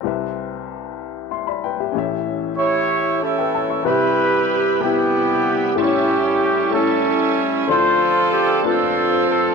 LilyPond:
<<
  \new Staff \with { instrumentName = "Upright piano" } { \time 6/8 \key c \major \tempo 4. = 63 << { r2 <e'' c'''>16 <d'' b''>16 <b' g''>16 <g' e''>16~ | <g' e''>16 r2 <b' g''>16 <cis'' a''>16 <e'' cis'''>16~ | <e'' cis'''>16 r2 r8. | r2. |
r2. | } \\ { <c' g' b' e''>2. | <cis' g' a' e''>2. | <c' g' b' e''>4 r8 <c g' b' g''>4 r8 | <a e' g' c'' cis''>4 r8 <a e' g' cis''>4 r8 |
<a d' e' f' c''>4 r8 <a d' f' b'>4 r8 | } >> }
  \new Staff \with { instrumentName = "Upright piano" } { \clef bass \time 6/8 \key c \major <c, c>2. | <a,, a,>2. | c4. r4. | a,4. r4. |
d4. r4. | }
  \new Staff \with { instrumentName = "Horn section" } { \time 6/8 \key c \major << { r2. | r4 cis''4 a'4 | b'4. g'4. | g'4. a'4 r8 |
c''4 g'8 a'4 a'8 | } \\ { r2. | r4 <e' g'>4 <cis' e'>4 | <e' g'>4. <b e'>4. | <cis' e'>4. <cis' e'>4. |
<f' a'>4. <c' f'>4. | } >> }
  \new Staff \with { instrumentName = "Tonewheel organ" } { \time 6/8 \key c \major r2. | r2. | <c g e' b'>2. | <g cis' e' a'>2. |
<f c' d' a'>2. | }
>>